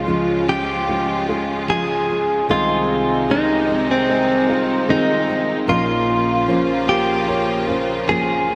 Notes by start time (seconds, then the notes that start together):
Already playing: C#2 C#3 F3 G#3 C#4 F4 G#4
0.05 F3 G#3 C#4 F4
0.46 G#3 C#4 F4 G4
0.89 G#3 C#4 F4
1.29 G#3 C#4 F4 G#4
1.68 F3 G#3 C#4 F4 G#4
2.08 G#3 C#4 F4
2.48 C2 C3 D#3 G#3 C4 D#4 F4 G#4
3.28 D#3 G#3 C4 D#4 G#4 A#4
3.68 G#3 C4 G#4
3.91 C4
4.09 G#3 C4 D#4 G#4
4.49 G#3 C4 D#4 F4
4.88 D#3 G#3 C4 D#4 G#4 A#4
5.27 G#3 C4 G#4
5.67 A#1 A#2 C#3 F3 A#3 C#4 F4 A#4
6.47 F3 A#3 C#4 F4 C5
6.87 A#3 C#4 F4 G4
7.27 A#3 C#4 F4 C#5
7.68 A#3 C#4 F4 C5
8.07 F3 A#3 C#4 F4 G#4 A#4
8.47 A#3 C#4 F4